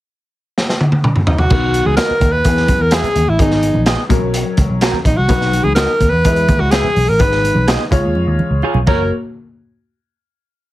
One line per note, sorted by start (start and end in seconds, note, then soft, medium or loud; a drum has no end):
0.58 snare medium
0.69 snare medium
0.81 high tom medium
0.92 high tom medium
1.04 mid tom medium
1.16 mid tom medium
1.27 1.40 D#4 medium
1.27 floor tom loud
1.38 1.88 F#4 medium
1.38 floor tom medium
1.50 1.81 B1 medium
1.50 2.07 D#3 medium
1.50 2.07 B3 medium
1.50 2.07 F#4 medium
1.50 kick loud
1.50 crash medium
1.50 muted conga soft
1.50 low conga medium
1.74 closed hi-hat medium
1.85 1.97 C#2 medium
1.85 1.96 G#4 medium
1.85 high conga medium
1.97 2.11 F#4 medium
1.97 2.33 A#4 loud
1.97 2.12 B4 medium
1.97 2.12 D#5 loud
1.97 snare loud
1.97 closed hi-hat medium
2.10 muted picked electric bass stroke soft
2.20 2.41 D#2 medium
2.20 kick medium
2.20 closed hi-hat medium
2.20 low conga medium
2.32 2.83 B4 loud
2.44 2.65 E2 medium
2.44 3.01 E3 medium
2.44 3.01 B3 medium
2.44 3.01 G#4 medium
2.44 kick medium
2.44 closed hi-hat medium
2.44 muted conga soft
2.57 snare soft
2.68 2.79 F#2 medium
2.68 kick medium
2.68 closed hi-hat medium
2.68 muted conga soft
2.68 high conga medium
2.80 3.00 E2 medium
2.80 2.95 A#4 medium
2.91 3.05 G#4 medium
2.91 3.30 G#4 medium
2.91 3.06 B4 medium
2.91 3.06 E5 medium
2.91 snare loud
2.91 closed hi-hat loud
2.91 muted conga soft
3.03 closed hi-hat soft
3.03 high conga medium
3.03 low conga medium
3.16 3.26 D#2 medium
3.16 closed hi-hat medium
3.16 muted conga soft
3.16 high conga medium
3.28 3.38 A1 medium
3.28 3.40 E4 medium
3.39 3.69 G#1 loud
3.39 3.95 D#3 medium
3.39 3.95 B3 medium
3.39 3.85 D#4 medium
3.39 3.95 G#4 medium
3.39 kick loud
3.39 closed hi-hat medium
3.39 muted conga soft
3.39 low conga medium
3.51 snare soft
3.63 closed hi-hat medium
3.63 muted conga soft
3.74 3.95 A#1 medium
3.74 high conga medium
3.86 4.00 G#4 medium
3.86 4.00 B4 medium
3.86 4.01 D#5 medium
3.86 snare loud
3.86 closed hi-hat medium
3.86 muted conga soft
4.09 4.20 A#1 medium
4.09 4.86 F#3 medium
4.09 4.86 C#4 medium
4.09 4.86 A#4 medium
4.09 kick loud
4.09 closed hi-hat medium
4.09 muted conga soft
4.09 low conga medium
4.22 4.42 B1 medium
4.34 closed hi-hat loud
4.57 4.68 C#2 medium
4.57 kick medium
4.57 closed hi-hat medium
4.57 muted conga soft
4.57 high conga medium
4.70 4.90 B1 medium
4.81 4.95 C#4 medium
4.81 4.96 F#4 medium
4.81 4.96 A#4 loud
4.81 snare loud
4.81 closed hi-hat loud
4.93 high conga soft
4.93 low conga medium
5.05 5.15 A#1 loud
5.05 5.19 D#4 medium
5.05 kick medium
5.05 closed hi-hat medium
5.05 muted conga soft
5.05 high conga medium
5.17 5.28 C2 medium
5.17 5.65 F#4 medium
5.28 5.59 B1 loud
5.28 5.85 F#3 medium
5.28 5.85 D#4 medium
5.28 5.86 B4 medium
5.28 kick loud
5.28 closed hi-hat medium
5.28 low conga medium
5.41 snare soft
5.53 closed hi-hat medium
5.53 muted conga soft
5.63 5.85 C#2 medium
5.63 5.74 G#4 medium
5.63 high conga medium
5.75 5.90 F#4 medium
5.75 6.11 A#4 loud
5.75 5.91 B4 medium
5.75 5.91 D#5 medium
5.75 snare loud
5.75 closed hi-hat medium
5.75 muted conga soft
6.00 6.10 D#2 medium
6.00 kick medium
6.00 closed hi-hat medium
6.00 low conga medium
6.10 6.22 E2 medium
6.10 6.62 B4 loud
6.25 6.45 E2 medium
6.25 6.81 G#3 medium
6.25 6.81 E4 medium
6.25 6.81 B4 medium
6.25 kick medium
6.25 closed hi-hat loud
6.36 closed hi-hat soft
6.48 6.59 D#2 medium
6.48 kick loud
6.48 closed hi-hat medium
6.48 muted conga soft
6.48 high conga medium
6.60 6.80 C#2 medium
6.60 6.72 F#4 medium
6.71 7.10 G#4 loud
6.71 6.86 G#4 medium
6.71 6.86 B4 medium
6.71 6.86 E5 medium
6.71 snare loud
6.71 closed hi-hat medium
6.71 muted conga soft
6.84 high conga soft
6.84 low conga medium
6.96 7.06 B1 loud
6.96 open hi-hat soft
6.96 muted conga soft
6.96 high conga medium
7.09 7.19 A1 medium
7.09 7.22 A#4 loud
7.18 7.50 G#1 loud
7.18 7.75 G#3 medium
7.18 7.76 D#4 medium
7.18 7.76 B4 medium
7.18 7.68 B4 loud
7.18 kick loud
7.18 closed hi-hat medium
7.18 muted conga soft
7.18 low conga medium
7.32 snare soft
7.43 closed hi-hat medium
7.43 muted conga soft
7.55 7.76 B1 medium
7.55 high conga medium
7.67 7.81 G#4 medium
7.67 7.82 B4 medium
7.67 7.82 D#5 loud
7.67 snare loud
7.67 closed hi-hat medium
7.91 8.02 C#2 loud
7.91 8.68 G#3 medium
7.91 8.68 F4 medium
7.91 8.68 C#5 loud
7.91 kick loud
7.91 closed hi-hat medium
7.91 muted conga soft
7.91 low conga medium
8.04 8.14 D#2 medium
8.15 8.25 F2 medium
8.15 muted conga soft
8.27 8.37 D#2 medium
8.39 muted conga soft
8.39 high conga medium
8.50 8.61 C#2 medium
8.62 8.77 F4 medium
8.62 8.77 G#4 medium
8.62 8.77 C#5 medium
8.62 muted conga soft
8.74 8.85 B1 medium
8.74 low conga medium
8.87 9.09 F#1 loud
8.87 9.10 A#3 medium
8.87 9.01 F#4 medium
8.87 9.10 F#4 medium
8.87 9.02 A#4 loud
8.87 9.10 A#4 medium
8.87 9.10 C#5 medium
8.87 9.02 C#5 medium
8.87 kick loud
8.87 crash medium
8.87 high conga medium